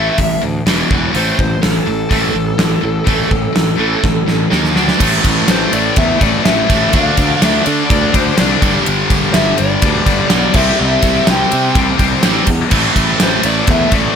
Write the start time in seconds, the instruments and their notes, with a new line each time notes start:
Already playing: distorted electric guitar A2 E3 A3, lead electric guitar E5
0.18 picked electric bass A1, distorted electric guitar A2 E3, kick, open hi-hat
0.42 picked electric bass D2, distorted electric guitar A2 E3
0.66 picked electric bass E1, distorted electric guitar E2 B2 E3, snare, open hi-hat
0.91 picked electric bass E1, distorted electric guitar E2 B2 E3, kick
1.12 picked electric bass A1, distorted electric guitar A2 E3 A3, lead electric guitar C5, open hi-hat
1.37 picked electric bass A1, distorted electric guitar A2 E3, lead electric guitar C5, kick
1.62 picked electric bass A1, distorted electric guitar A2 E3, lead electric guitar A4, snare, open hi-hat
1.86 picked electric bass A1, distorted electric guitar A2 E3
2.09 picked electric bass A1, distorted electric guitar A2 E3 A3, kick, open hi-hat
2.33 picked electric bass A1, distorted electric guitar A2 E3
2.58 picked electric bass A1, distorted electric guitar A2 E3, snare, open hi-hat
2.81 picked electric bass A1, distorted electric guitar A2 E3
3.04 picked electric bass A1, distorted electric guitar A2 E3 A3, kick, open hi-hat
3.29 picked electric bass A1, distorted electric guitar A2 E3, kick
3.53 picked electric bass A1, distorted electric guitar A2 E3, snare, open hi-hat
3.76 picked electric bass A1, distorted electric guitar A2 E3 A3
4.02 picked electric bass A1, distorted electric guitar A2 E3, kick, snare
4.26 picked electric bass A1, distorted electric guitar A2 E3, snare
4.50 picked electric bass D#2, distorted electric guitar D#3 A#3 D#4, snare
4.64 snare
4.75 picked electric bass D2, distorted electric guitar D3 A3 D4, snare
4.88 snare
4.99 picked electric bass A1, distorted electric guitar A2 E3 A3, kick, crash
5.25 picked electric bass A1, kick, ride
5.48 picked electric bass A1, lead electric guitar C5, snare, ride
5.72 picked electric bass A1, distorted electric guitar A2 E3 A3, lead electric guitar D5, ride
5.96 picked electric bass E2, lead electric guitar E5, kick, ride
6.19 picked electric bass A1, distorted electric guitar A2 E3 A3, lead electric guitar D5, kick, ride
6.45 picked electric bass A1, distorted electric guitar A2 E3 A3, lead electric guitar E5, snare, ride
6.69 picked electric bass A1, overdriven electric guitar A2 E3 A3, kick, ride
6.92 picked electric bass D2, distorted electric guitar D3 A3 D4, lead electric guitar F5, kick, ride
7.17 picked electric bass D2, kick, ride
7.42 picked electric bass D2, lead electric guitar E5, snare, ride
7.63 picked electric bass D3, distorted electric guitar A3 D4, lead electric guitar D5, ride
7.67 distorted electric guitar D3
7.90 picked electric bass D2, lead electric guitar D5, kick, ride
8.13 picked electric bass D2, distorted electric guitar D3 A3 D4, lead electric guitar C5, kick, ride
8.38 picked electric bass C2, distorted electric guitar D3 A3 D4, lead electric guitar D5, snare, ride
8.62 picked electric bass G1, distorted electric guitar G2 D3 G3, kick, ride
8.86 picked electric bass G1, ride
9.10 picked electric bass G1, kick, ride
9.33 picked electric bass G1, distorted electric guitar G2 D3 G3, lead electric guitar E5, snare, ride
9.58 picked electric bass G1, lead electric guitar D5, ride
9.82 picked electric bass D2, distorted electric guitar G2 D3 G3, kick, ride
10.05 picked electric bass G1, distorted electric guitar G2 D3 G3, kick, ride
10.29 overdriven electric guitar G2 D3 G3, snare, ride
10.33 picked electric bass B1
10.54 picked electric bass C2, distorted electric guitar C3 G3 C4, lead electric guitar E5, kick, crash
10.80 picked electric bass C2, lead electric guitar E5
11.02 picked electric bass C2, kick, ride
11.26 picked electric bass C2, distorted electric guitar C3 G3 C4, lead electric guitar G5, snare, ride
11.52 picked electric bass C3, ride
11.75 picked electric bass C2, distorted electric guitar C3 G3 C4, kick, ride
11.99 picked electric bass C2, distorted electric guitar C3 G3 C4, kick, ride
12.23 picked electric bass A1, overdriven electric guitar C3 G3 C4, snare, ride
12.47 picked electric bass E2, kick, ride
12.71 picked electric bass A1, distorted electric guitar A2 E3 A3, kick, crash
12.96 picked electric bass A1, kick, ride
13.20 picked electric bass A1, lead electric guitar C5, snare, ride
13.42 picked electric bass A1, distorted electric guitar E3 A3, lead electric guitar D5, ride
13.46 distorted electric guitar A2
13.67 picked electric bass E2, lead electric guitar E5, kick, ride
13.91 picked electric bass A1, distorted electric guitar A2 E3 A3, lead electric guitar D5, kick, ride